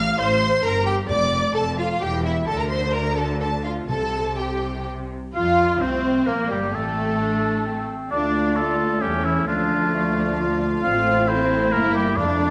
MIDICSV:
0, 0, Header, 1, 10, 480
1, 0, Start_track
1, 0, Key_signature, -1, "major"
1, 0, Tempo, 458716
1, 1155, Time_signature, 3, 2, 24, 8
1, 3569, Tempo, 485044
1, 5489, Tempo, 461894
1, 7409, Tempo, 452830
1, 13032, End_track
2, 0, Start_track
2, 0, Title_t, "Violin section"
2, 0, Program_c, 0, 48
2, 0, Note_on_c, 0, 89, 101
2, 199, Note_on_c, 0, 84, 109
2, 200, Note_off_c, 0, 89, 0
2, 665, Note_off_c, 0, 84, 0
2, 673, Note_on_c, 0, 82, 104
2, 904, Note_on_c, 0, 79, 88
2, 914, Note_off_c, 0, 82, 0
2, 987, Note_off_c, 0, 79, 0
2, 1145, Note_on_c, 0, 86, 102
2, 1620, Note_off_c, 0, 86, 0
2, 1626, Note_on_c, 0, 81, 104
2, 1865, Note_on_c, 0, 77, 86
2, 1866, Note_off_c, 0, 81, 0
2, 2103, Note_on_c, 0, 79, 99
2, 2105, Note_off_c, 0, 77, 0
2, 2349, Note_on_c, 0, 76, 77
2, 2350, Note_off_c, 0, 79, 0
2, 2586, Note_on_c, 0, 81, 96
2, 2590, Note_off_c, 0, 76, 0
2, 2711, Note_off_c, 0, 81, 0
2, 2714, Note_on_c, 0, 82, 82
2, 2763, Note_off_c, 0, 82, 0
2, 2826, Note_on_c, 0, 84, 84
2, 3067, Note_on_c, 0, 82, 86
2, 3068, Note_off_c, 0, 84, 0
2, 3311, Note_off_c, 0, 82, 0
2, 3314, Note_on_c, 0, 81, 81
2, 3546, Note_off_c, 0, 81, 0
2, 3559, Note_on_c, 0, 81, 85
2, 3792, Note_on_c, 0, 77, 64
2, 3794, Note_off_c, 0, 81, 0
2, 3871, Note_off_c, 0, 77, 0
2, 4033, Note_on_c, 0, 81, 91
2, 4517, Note_off_c, 0, 81, 0
2, 4527, Note_on_c, 0, 79, 68
2, 5012, Note_off_c, 0, 79, 0
2, 5478, Note_on_c, 0, 77, 68
2, 5929, Note_off_c, 0, 77, 0
2, 5956, Note_on_c, 0, 72, 64
2, 6431, Note_off_c, 0, 72, 0
2, 6434, Note_on_c, 0, 70, 70
2, 6517, Note_off_c, 0, 70, 0
2, 6680, Note_on_c, 0, 67, 59
2, 6763, Note_off_c, 0, 67, 0
2, 6923, Note_on_c, 0, 69, 69
2, 8106, Note_off_c, 0, 69, 0
2, 8369, Note_on_c, 0, 77, 62
2, 9287, Note_off_c, 0, 77, 0
2, 9328, Note_on_c, 0, 76, 66
2, 9782, Note_off_c, 0, 76, 0
2, 9825, Note_on_c, 0, 77, 74
2, 12169, Note_off_c, 0, 77, 0
2, 12207, Note_on_c, 0, 76, 77
2, 12651, Note_off_c, 0, 76, 0
2, 12684, Note_on_c, 0, 77, 73
2, 13032, Note_off_c, 0, 77, 0
2, 13032, End_track
3, 0, Start_track
3, 0, Title_t, "Oboe"
3, 0, Program_c, 1, 68
3, 5485, Note_on_c, 1, 77, 79
3, 5970, Note_on_c, 1, 72, 75
3, 5986, Note_off_c, 1, 77, 0
3, 6445, Note_on_c, 1, 70, 69
3, 6461, Note_off_c, 1, 72, 0
3, 6687, Note_off_c, 1, 70, 0
3, 6691, Note_on_c, 1, 67, 69
3, 6942, Note_on_c, 1, 69, 78
3, 6957, Note_off_c, 1, 67, 0
3, 8139, Note_off_c, 1, 69, 0
3, 8379, Note_on_c, 1, 74, 96
3, 8854, Note_on_c, 1, 69, 82
3, 8870, Note_off_c, 1, 74, 0
3, 9337, Note_on_c, 1, 67, 90
3, 9353, Note_off_c, 1, 69, 0
3, 9577, Note_on_c, 1, 64, 95
3, 9593, Note_off_c, 1, 67, 0
3, 9817, Note_off_c, 1, 64, 0
3, 9824, Note_on_c, 1, 65, 98
3, 11002, Note_off_c, 1, 65, 0
3, 11259, Note_on_c, 1, 77, 108
3, 11739, Note_on_c, 1, 72, 95
3, 11755, Note_off_c, 1, 77, 0
3, 12210, Note_on_c, 1, 70, 116
3, 12226, Note_off_c, 1, 72, 0
3, 12433, Note_off_c, 1, 70, 0
3, 12439, Note_on_c, 1, 67, 89
3, 12675, Note_on_c, 1, 74, 102
3, 12691, Note_off_c, 1, 67, 0
3, 13032, Note_off_c, 1, 74, 0
3, 13032, End_track
4, 0, Start_track
4, 0, Title_t, "Viola section"
4, 0, Program_c, 2, 48
4, 0, Note_on_c, 2, 77, 102
4, 192, Note_off_c, 2, 77, 0
4, 202, Note_on_c, 2, 72, 92
4, 663, Note_on_c, 2, 70, 86
4, 676, Note_off_c, 2, 72, 0
4, 904, Note_on_c, 2, 67, 76
4, 909, Note_off_c, 2, 70, 0
4, 1142, Note_on_c, 2, 74, 86
4, 1150, Note_off_c, 2, 67, 0
4, 1623, Note_on_c, 2, 69, 77
4, 1628, Note_off_c, 2, 74, 0
4, 1867, Note_on_c, 2, 65, 77
4, 1870, Note_off_c, 2, 69, 0
4, 1950, Note_off_c, 2, 65, 0
4, 2110, Note_on_c, 2, 67, 77
4, 2194, Note_off_c, 2, 67, 0
4, 2355, Note_on_c, 2, 64, 75
4, 2593, Note_off_c, 2, 64, 0
4, 2596, Note_on_c, 2, 69, 88
4, 2718, Note_off_c, 2, 69, 0
4, 2722, Note_on_c, 2, 70, 80
4, 2839, Note_off_c, 2, 70, 0
4, 2841, Note_on_c, 2, 72, 80
4, 3063, Note_on_c, 2, 70, 76
4, 3081, Note_off_c, 2, 72, 0
4, 3314, Note_off_c, 2, 70, 0
4, 3315, Note_on_c, 2, 69, 72
4, 3558, Note_off_c, 2, 69, 0
4, 3570, Note_on_c, 2, 69, 77
4, 3649, Note_off_c, 2, 69, 0
4, 3804, Note_on_c, 2, 65, 56
4, 4039, Note_off_c, 2, 65, 0
4, 4039, Note_on_c, 2, 69, 81
4, 4520, Note_off_c, 2, 69, 0
4, 4541, Note_on_c, 2, 67, 52
4, 5009, Note_off_c, 2, 67, 0
4, 5494, Note_on_c, 2, 65, 70
4, 5938, Note_off_c, 2, 65, 0
4, 5970, Note_on_c, 2, 60, 73
4, 6448, Note_off_c, 2, 60, 0
4, 6451, Note_on_c, 2, 58, 75
4, 6685, Note_off_c, 2, 58, 0
4, 6691, Note_on_c, 2, 55, 61
4, 6930, Note_off_c, 2, 55, 0
4, 6935, Note_on_c, 2, 57, 72
4, 8112, Note_off_c, 2, 57, 0
4, 8375, Note_on_c, 2, 57, 68
4, 11219, Note_off_c, 2, 57, 0
4, 11268, Note_on_c, 2, 57, 74
4, 12169, Note_off_c, 2, 57, 0
4, 12221, Note_on_c, 2, 58, 75
4, 12658, Note_off_c, 2, 58, 0
4, 12693, Note_on_c, 2, 57, 73
4, 13032, Note_off_c, 2, 57, 0
4, 13032, End_track
5, 0, Start_track
5, 0, Title_t, "Violin section"
5, 0, Program_c, 3, 48
5, 0, Note_on_c, 3, 77, 97
5, 194, Note_off_c, 3, 77, 0
5, 197, Note_on_c, 3, 72, 89
5, 664, Note_off_c, 3, 72, 0
5, 665, Note_on_c, 3, 70, 81
5, 904, Note_on_c, 3, 67, 84
5, 905, Note_off_c, 3, 70, 0
5, 987, Note_off_c, 3, 67, 0
5, 1144, Note_on_c, 3, 74, 93
5, 1619, Note_on_c, 3, 69, 82
5, 1620, Note_off_c, 3, 74, 0
5, 1702, Note_off_c, 3, 69, 0
5, 1870, Note_on_c, 3, 65, 66
5, 2107, Note_off_c, 3, 65, 0
5, 2107, Note_on_c, 3, 67, 77
5, 2352, Note_off_c, 3, 67, 0
5, 2358, Note_on_c, 3, 64, 80
5, 2442, Note_off_c, 3, 64, 0
5, 2590, Note_on_c, 3, 69, 84
5, 2713, Note_off_c, 3, 69, 0
5, 2715, Note_on_c, 3, 70, 58
5, 2836, Note_on_c, 3, 72, 79
5, 2838, Note_off_c, 3, 70, 0
5, 3068, Note_on_c, 3, 70, 81
5, 3074, Note_off_c, 3, 72, 0
5, 3317, Note_off_c, 3, 70, 0
5, 3320, Note_on_c, 3, 69, 64
5, 3404, Note_off_c, 3, 69, 0
5, 3571, Note_on_c, 3, 69, 65
5, 3650, Note_off_c, 3, 69, 0
5, 3804, Note_on_c, 3, 65, 67
5, 3883, Note_off_c, 3, 65, 0
5, 4043, Note_on_c, 3, 69, 79
5, 4522, Note_off_c, 3, 69, 0
5, 4531, Note_on_c, 3, 67, 55
5, 5004, Note_off_c, 3, 67, 0
5, 5483, Note_on_c, 3, 65, 74
5, 5932, Note_off_c, 3, 65, 0
5, 5974, Note_on_c, 3, 60, 74
5, 6440, Note_off_c, 3, 60, 0
5, 6446, Note_on_c, 3, 58, 66
5, 6684, Note_on_c, 3, 55, 67
5, 6687, Note_off_c, 3, 58, 0
5, 6927, Note_off_c, 3, 55, 0
5, 6938, Note_on_c, 3, 57, 67
5, 8138, Note_off_c, 3, 57, 0
5, 8380, Note_on_c, 3, 62, 57
5, 9293, Note_off_c, 3, 62, 0
5, 9331, Note_on_c, 3, 61, 56
5, 9784, Note_off_c, 3, 61, 0
5, 9819, Note_on_c, 3, 62, 65
5, 11219, Note_off_c, 3, 62, 0
5, 11256, Note_on_c, 3, 60, 70
5, 12163, Note_off_c, 3, 60, 0
5, 12219, Note_on_c, 3, 64, 80
5, 12657, Note_off_c, 3, 64, 0
5, 12688, Note_on_c, 3, 62, 70
5, 13032, Note_off_c, 3, 62, 0
5, 13032, End_track
6, 0, Start_track
6, 0, Title_t, "Clarinet"
6, 0, Program_c, 4, 71
6, 5961, Note_on_c, 4, 57, 57
6, 6410, Note_off_c, 4, 57, 0
6, 6439, Note_on_c, 4, 58, 58
6, 6930, Note_on_c, 4, 60, 58
6, 6946, Note_off_c, 4, 58, 0
6, 7396, Note_off_c, 4, 60, 0
6, 7402, Note_on_c, 4, 62, 65
6, 7892, Note_on_c, 4, 60, 60
6, 7908, Note_off_c, 4, 62, 0
6, 8373, Note_on_c, 4, 62, 71
6, 8389, Note_off_c, 4, 60, 0
6, 8856, Note_on_c, 4, 65, 74
6, 8872, Note_off_c, 4, 62, 0
6, 9322, Note_off_c, 4, 65, 0
6, 9328, Note_on_c, 4, 61, 71
6, 9806, Note_off_c, 4, 61, 0
6, 9821, Note_on_c, 4, 62, 66
6, 10312, Note_on_c, 4, 57, 68
6, 10328, Note_off_c, 4, 62, 0
6, 10780, Note_off_c, 4, 57, 0
6, 10786, Note_on_c, 4, 65, 81
6, 11717, Note_off_c, 4, 65, 0
6, 11735, Note_on_c, 4, 64, 92
6, 12665, Note_off_c, 4, 64, 0
6, 12686, Note_on_c, 4, 62, 74
6, 13032, Note_off_c, 4, 62, 0
6, 13032, End_track
7, 0, Start_track
7, 0, Title_t, "French horn section"
7, 0, Program_c, 5, 60
7, 5484, Note_on_c, 5, 65, 77
7, 5932, Note_off_c, 5, 65, 0
7, 5966, Note_on_c, 5, 60, 65
7, 6446, Note_off_c, 5, 60, 0
7, 6450, Note_on_c, 5, 58, 63
7, 6689, Note_off_c, 5, 58, 0
7, 6701, Note_on_c, 5, 55, 54
7, 6931, Note_off_c, 5, 55, 0
7, 6940, Note_on_c, 5, 57, 59
7, 8114, Note_off_c, 5, 57, 0
7, 8380, Note_on_c, 5, 57, 61
7, 8382, Note_on_c, 5, 65, 59
7, 8826, Note_off_c, 5, 57, 0
7, 8827, Note_off_c, 5, 65, 0
7, 8858, Note_on_c, 5, 57, 65
7, 8858, Note_on_c, 5, 65, 61
7, 8965, Note_off_c, 5, 65, 0
7, 9092, Note_on_c, 5, 62, 64
7, 9320, Note_off_c, 5, 57, 0
7, 9326, Note_off_c, 5, 62, 0
7, 9332, Note_on_c, 5, 61, 65
7, 9333, Note_on_c, 5, 57, 70
7, 9798, Note_off_c, 5, 57, 0
7, 9808, Note_off_c, 5, 61, 0
7, 9810, Note_on_c, 5, 57, 64
7, 9816, Note_on_c, 5, 62, 74
7, 11228, Note_off_c, 5, 57, 0
7, 11248, Note_on_c, 5, 57, 63
7, 11253, Note_on_c, 5, 60, 71
7, 11260, Note_off_c, 5, 62, 0
7, 12159, Note_off_c, 5, 57, 0
7, 12162, Note_off_c, 5, 60, 0
7, 12213, Note_on_c, 5, 64, 71
7, 12217, Note_on_c, 5, 58, 77
7, 12687, Note_off_c, 5, 64, 0
7, 12689, Note_off_c, 5, 58, 0
7, 12695, Note_on_c, 5, 57, 70
7, 12696, Note_on_c, 5, 62, 77
7, 13032, Note_off_c, 5, 57, 0
7, 13032, Note_off_c, 5, 62, 0
7, 13032, End_track
8, 0, Start_track
8, 0, Title_t, "Cello section"
8, 0, Program_c, 6, 48
8, 0, Note_on_c, 6, 45, 87
8, 144, Note_off_c, 6, 45, 0
8, 196, Note_on_c, 6, 45, 76
8, 617, Note_off_c, 6, 45, 0
8, 669, Note_on_c, 6, 43, 72
8, 1095, Note_off_c, 6, 43, 0
8, 1147, Note_on_c, 6, 41, 73
8, 1574, Note_off_c, 6, 41, 0
8, 1629, Note_on_c, 6, 41, 78
8, 2055, Note_off_c, 6, 41, 0
8, 2110, Note_on_c, 6, 40, 83
8, 2538, Note_off_c, 6, 40, 0
8, 2592, Note_on_c, 6, 50, 72
8, 4001, Note_off_c, 6, 50, 0
8, 4045, Note_on_c, 6, 48, 62
8, 5261, Note_off_c, 6, 48, 0
8, 5490, Note_on_c, 6, 65, 68
8, 5936, Note_off_c, 6, 65, 0
8, 5965, Note_on_c, 6, 60, 62
8, 6444, Note_on_c, 6, 58, 65
8, 6446, Note_off_c, 6, 60, 0
8, 6683, Note_on_c, 6, 55, 66
8, 6686, Note_off_c, 6, 58, 0
8, 6923, Note_on_c, 6, 57, 58
8, 6927, Note_off_c, 6, 55, 0
8, 8106, Note_off_c, 6, 57, 0
8, 8374, Note_on_c, 6, 62, 80
8, 8823, Note_off_c, 6, 62, 0
8, 8856, Note_on_c, 6, 57, 70
8, 9325, Note_on_c, 6, 55, 70
8, 9332, Note_off_c, 6, 57, 0
8, 9410, Note_off_c, 6, 55, 0
8, 9568, Note_on_c, 6, 52, 68
8, 9811, Note_off_c, 6, 52, 0
8, 9817, Note_on_c, 6, 53, 71
8, 10998, Note_off_c, 6, 53, 0
8, 11255, Note_on_c, 6, 65, 83
8, 11700, Note_off_c, 6, 65, 0
8, 11732, Note_on_c, 6, 60, 87
8, 12196, Note_off_c, 6, 60, 0
8, 12212, Note_on_c, 6, 58, 93
8, 12440, Note_on_c, 6, 55, 80
8, 12447, Note_off_c, 6, 58, 0
8, 12682, Note_off_c, 6, 55, 0
8, 12682, Note_on_c, 6, 62, 88
8, 13032, Note_off_c, 6, 62, 0
8, 13032, End_track
9, 0, Start_track
9, 0, Title_t, "Timpani"
9, 0, Program_c, 7, 47
9, 1149, Note_on_c, 7, 41, 63
9, 1830, Note_off_c, 7, 41, 0
9, 4045, Note_on_c, 7, 48, 70
9, 4735, Note_off_c, 7, 48, 0
9, 12678, Note_on_c, 7, 41, 78
9, 13032, Note_off_c, 7, 41, 0
9, 13032, End_track
10, 0, Start_track
10, 0, Title_t, "Double bass section"
10, 0, Program_c, 8, 48
10, 0, Note_on_c, 8, 33, 90
10, 144, Note_off_c, 8, 33, 0
10, 197, Note_on_c, 8, 33, 71
10, 617, Note_off_c, 8, 33, 0
10, 670, Note_on_c, 8, 31, 74
10, 1095, Note_off_c, 8, 31, 0
10, 1154, Note_on_c, 8, 29, 78
10, 1577, Note_off_c, 8, 29, 0
10, 1630, Note_on_c, 8, 29, 65
10, 2056, Note_off_c, 8, 29, 0
10, 2109, Note_on_c, 8, 28, 81
10, 2538, Note_off_c, 8, 28, 0
10, 2595, Note_on_c, 8, 38, 78
10, 4002, Note_off_c, 8, 38, 0
10, 4045, Note_on_c, 8, 36, 64
10, 5261, Note_off_c, 8, 36, 0
10, 5486, Note_on_c, 8, 41, 79
10, 5933, Note_off_c, 8, 41, 0
10, 5964, Note_on_c, 8, 36, 67
10, 6442, Note_on_c, 8, 34, 69
10, 6445, Note_off_c, 8, 36, 0
10, 6680, Note_off_c, 8, 34, 0
10, 6689, Note_on_c, 8, 31, 64
10, 6929, Note_off_c, 8, 31, 0
10, 6930, Note_on_c, 8, 33, 64
10, 8133, Note_off_c, 8, 33, 0
10, 8375, Note_on_c, 8, 38, 72
10, 9290, Note_off_c, 8, 38, 0
10, 9333, Note_on_c, 8, 40, 63
10, 9819, Note_off_c, 8, 40, 0
10, 9821, Note_on_c, 8, 38, 73
10, 11233, Note_off_c, 8, 38, 0
10, 11259, Note_on_c, 8, 33, 80
10, 12188, Note_off_c, 8, 33, 0
10, 12207, Note_on_c, 8, 31, 84
10, 12679, Note_on_c, 8, 41, 91
10, 12684, Note_off_c, 8, 31, 0
10, 13032, Note_off_c, 8, 41, 0
10, 13032, End_track
0, 0, End_of_file